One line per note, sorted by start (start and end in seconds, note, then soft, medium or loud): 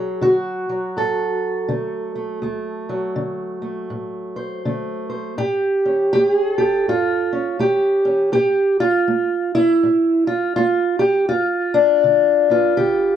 0.00 0.17 D2 medium
0.00 0.69 F#3 soft
0.00 0.23 G#4 loud
0.21 0.90 D3 medium
0.21 1.69 F#4 medium
0.69 2.88 F#3 soft
0.97 1.64 A2 medium
0.97 3.91 A4 medium
1.68 2.37 D3 medium
1.68 2.15 A3 soft
2.16 2.43 A3 soft
2.42 3.11 D2 medium
2.42 3.62 A3 soft
2.89 5.38 F#3 soft
3.16 3.84 D3 medium
3.62 4.66 A3 soft
3.90 4.58 A2 medium
4.36 5.08 C5 soft
4.65 5.33 D3 medium
4.65 5.38 A3 soft
5.09 5.35 C5 soft
5.38 6.06 A2 medium
5.38 6.13 G4 loud
5.85 7.31 C#4 soft
6.13 6.81 A3 medium
6.13 6.28 G4 loud
6.28 6.58 G#4 loud
6.58 6.86 G4 medium
6.58 7.31 A4 loud
6.88 7.55 A2 medium
6.88 7.60 F4 loud
7.33 8.04 C#4 soft
7.60 8.28 A3 medium
7.60 8.32 G4 medium
8.05 8.30 C#4 soft
8.32 9.01 A2 medium
8.32 8.78 G4 loud
8.80 9.53 F4 loud
9.08 9.76 A3 medium
9.55 10.27 E4 loud
9.83 10.50 A2 medium
10.27 10.55 F4 medium
10.56 11.24 A3 medium
10.56 10.99 F4 medium
10.99 11.28 G4 medium
11.29 11.98 G2 medium
11.29 12.48 F4 loud
11.74 12.76 D4 loud
12.04 12.71 D3 medium
12.50 13.16 B3 soft
12.50 13.16 F4 medium
12.77 13.16 D3 medium
12.77 13.16 G4 medium